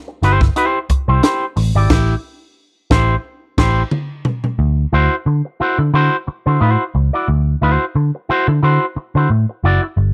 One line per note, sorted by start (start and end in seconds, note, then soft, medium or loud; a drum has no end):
0.08 muted clean electric guitar stroke medium
0.22 0.48 G1 medium
0.22 0.44 E4 medium
0.22 0.41 G4 medium
0.22 0.40 C5 medium
0.22 snare soft
0.22 closed hi-hat medium
0.41 muted clean electric guitar stroke soft
0.41 kick loud
0.41 snare soft
0.56 0.78 E4 medium
0.56 0.78 G4 medium
0.56 0.78 C5 medium
0.56 closed hi-hat medium
0.90 muted picked electric bass stroke medium
0.90 muted clean electric guitar stroke soft
0.90 kick medium
0.90 closed hi-hat medium
1.08 1.20 C2 medium
1.08 1.22 E4 medium
1.08 1.22 G4 medium
1.08 1.22 C5 medium
1.23 1.44 E4 medium
1.23 1.45 G4 medium
1.23 1.45 C5 medium
1.23 snare loud
1.23 closed hi-hat medium
1.56 1.71 A1 medium
1.56 muted clean electric guitar stroke soft
1.56 snare soft
1.56 open hi-hat medium
1.75 1.87 G#1 medium
1.75 1.90 E4 medium
1.75 1.89 G4 medium
1.75 1.89 D5 medium
1.90 2.14 A1 medium
1.90 2.14 E4 loud
1.90 2.14 G4 loud
1.90 kick loud
1.90 snare loud
1.90 crash medium
2.90 3.14 A1 medium
2.90 3.14 E4 loud
2.90 3.15 G4 medium
2.90 3.15 C5 loud
2.90 kick loud
2.90 snare loud
3.58 3.82 A1 loud
3.58 3.82 E4 loud
3.58 3.82 G4 loud
3.58 3.82 C5 loud
3.58 kick loud
3.58 snare loud
3.58 crash medium
3.91 mid tom loud
4.25 floor tom loud
4.44 floor tom medium
4.59 4.85 D2 loud
4.92 5.07 D2 medium
4.92 5.14 E4 medium
4.92 5.14 F#4 medium
4.92 5.15 C5 loud
5.26 5.41 D3 medium
5.26 muted clean electric guitar stroke soft
5.45 muted clean electric guitar stroke soft
5.60 5.81 E4 medium
5.60 5.79 F#4 medium
5.60 5.78 C5 medium
5.60 muted picked electric bass stroke soft
5.79 5.90 D3 medium
5.79 muted clean electric guitar stroke soft
5.94 6.08 D3 loud
5.94 6.15 E4 medium
5.94 6.15 F#4 medium
5.94 6.16 C5 medium
6.27 muted clean electric guitar stroke soft
6.27 muted picked electric bass stroke medium
6.46 6.58 D3 medium
6.46 6.59 E4 soft
6.46 6.60 F#4 soft
6.46 6.60 C5 medium
6.61 6.76 A2 medium
6.61 6.83 E4 medium
6.61 6.83 F#4 medium
6.61 6.83 C5 medium
6.95 7.09 C#2 medium
6.95 muted clean electric guitar stroke soft
7.13 7.28 E4 medium
7.13 7.28 F#4 medium
7.13 7.27 D5 medium
7.28 7.54 D2 loud
7.62 7.76 D2 loud
7.62 7.84 E4 medium
7.62 7.84 F#4 medium
7.62 7.84 C5 medium
7.95 8.10 D3 medium
7.95 muted clean electric guitar stroke soft
8.15 muted clean electric guitar stroke soft
8.29 8.51 E4 medium
8.29 8.48 F#4 loud
8.29 8.47 C5 loud
8.29 muted picked electric bass stroke soft
8.48 8.59 D3 loud
8.48 muted clean electric guitar stroke soft
8.63 8.78 D3 loud
8.63 8.84 E4 medium
8.63 8.85 F#4 medium
8.63 8.85 C5 medium
8.96 muted picked electric bass stroke medium
8.96 muted clean electric guitar stroke medium
9.15 9.27 D3 medium
9.15 9.30 E4 medium
9.15 9.30 F#4 medium
9.15 9.29 C5 medium
9.30 9.45 A2 medium
9.30 muted clean electric guitar stroke soft
9.49 muted clean electric guitar stroke soft
9.64 9.78 F#1 medium
9.64 9.86 E4 medium
9.64 9.83 F#4 medium
9.64 9.83 D5 medium
9.83 muted clean electric guitar stroke soft
9.97 10.14 G1 loud